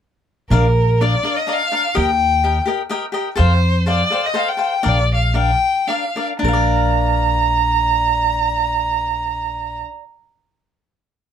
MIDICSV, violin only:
0, 0, Header, 1, 2, 480
1, 0, Start_track
1, 0, Key_signature, -2, "major"
1, 0, Tempo, 481155
1, 496, Time_signature, 3, 2, 24, 8
1, 3850, Tempo, 495868
1, 5290, Tempo, 536193
1, 6250, Tempo, 554017
1, 10498, End_track
2, 0, Start_track
2, 0, Title_t, "Violin"
2, 0, Program_c, 0, 40
2, 500, Note_on_c, 0, 70, 70
2, 1008, Note_on_c, 0, 74, 74
2, 1023, Note_off_c, 0, 70, 0
2, 1363, Note_on_c, 0, 75, 70
2, 1378, Note_off_c, 0, 74, 0
2, 1527, Note_on_c, 0, 77, 85
2, 1542, Note_off_c, 0, 75, 0
2, 1974, Note_off_c, 0, 77, 0
2, 1984, Note_on_c, 0, 79, 84
2, 2640, Note_off_c, 0, 79, 0
2, 3395, Note_on_c, 0, 72, 81
2, 3829, Note_off_c, 0, 72, 0
2, 3887, Note_on_c, 0, 74, 78
2, 4236, Note_on_c, 0, 75, 66
2, 4251, Note_off_c, 0, 74, 0
2, 4364, Note_on_c, 0, 77, 74
2, 4378, Note_off_c, 0, 75, 0
2, 4456, Note_on_c, 0, 79, 74
2, 4471, Note_off_c, 0, 77, 0
2, 4841, Note_on_c, 0, 74, 89
2, 4856, Note_off_c, 0, 79, 0
2, 5065, Note_off_c, 0, 74, 0
2, 5092, Note_on_c, 0, 77, 67
2, 5299, Note_off_c, 0, 77, 0
2, 5313, Note_on_c, 0, 79, 85
2, 5765, Note_on_c, 0, 77, 68
2, 5779, Note_off_c, 0, 79, 0
2, 6129, Note_off_c, 0, 77, 0
2, 6240, Note_on_c, 0, 82, 73
2, 9171, Note_off_c, 0, 82, 0
2, 10498, End_track
0, 0, End_of_file